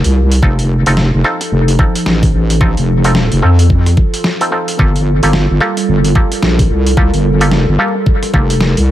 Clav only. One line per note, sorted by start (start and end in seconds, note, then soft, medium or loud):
0.43 0.65 C4 medium
0.43 0.65 D#4 medium
0.43 0.65 F4 medium
0.43 0.65 A4 loud
0.87 1.06 C4 medium
0.87 1.06 D#4 medium
0.87 1.06 F4 medium
0.87 1.06 A4 loud
1.24 1.40 C4 medium
1.24 1.40 D#4 medium
1.24 1.40 F4 medium
1.24 1.40 A4 loud
1.79 1.95 C4 medium
1.79 1.95 D#4 medium
1.79 1.95 F4 medium
1.79 1.95 A4 medium
2.61 2.83 C4 loud
2.61 2.83 D#4 medium
2.61 2.83 F4 medium
2.61 2.83 A4 loud
3.04 3.24 C4 medium
3.04 3.24 D#4 medium
3.04 3.24 F4 medium
3.04 3.24 A4 loud
3.42 3.58 C4 medium
3.42 3.58 D#4 medium
3.42 3.58 F4 medium
3.42 3.58 A4 medium
4.41 4.50 C4 medium
4.41 4.50 D#4 medium
4.41 4.50 F4 medium
4.41 4.50 A4 medium
4.52 4.76 C4 medium
4.52 4.76 D#4 medium
4.52 4.76 F4 medium
4.52 4.76 A4 medium
4.79 5.01 A#3 medium
4.79 5.01 F4 medium
4.79 5.01 G4 medium
4.79 5.01 A4 loud
5.23 5.42 A#3 medium
5.23 5.42 F4 medium
5.23 5.42 G4 medium
5.23 5.42 A4 loud
5.61 5.76 A#3 medium
5.61 5.77 F4 medium
5.61 5.77 G4 medium
5.61 5.76 A4 loud
6.15 6.31 A#3 medium
6.15 6.31 F4 medium
6.15 6.31 G4 medium
6.15 6.31 A4 loud
6.97 7.19 A#3 medium
6.97 7.19 F4 medium
6.97 7.19 G4 medium
6.97 7.19 A4 loud
7.41 7.60 A#3 medium
7.41 7.60 F4 medium
7.41 7.60 G4 medium
7.41 7.60 A4 loud
7.79 7.95 A#3 medium
7.79 7.95 F4 medium
7.79 7.95 G4 medium
7.79 7.95 A4 medium
8.33 8.49 A#3 medium
8.33 8.49 F4 medium
8.33 8.49 G4 medium
8.33 8.49 A4 loud